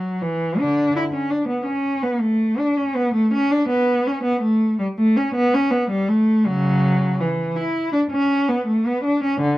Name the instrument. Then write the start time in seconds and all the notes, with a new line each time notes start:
cello
Already playing: F#3
0.22 E3
0.60 D3 D4
0.96 E4
1.14 C#4
1.30 D4
1.49 B3
1.66 C#4
2.03 B3
2.21 A3
2.59 D4
2.77 C#4
2.96 B3
3.14 A3
3.34 C#4
3.51 D4
3.69 B3
4.07 C#4
4.24 B3
4.42 A3
4.80 G3
4.99 A3
5.17 C#4
5.35 B3
5.54 C#4
5.71 B3
5.91 G3
6.09 A3
6.46 C#3 F#3
7.20 E3
7.56 E4
7.93 D4
8.11 C#4
8.49 B3
8.67 A3
8.87 B3
9.04 D4
9.24 C#4
9.41 D3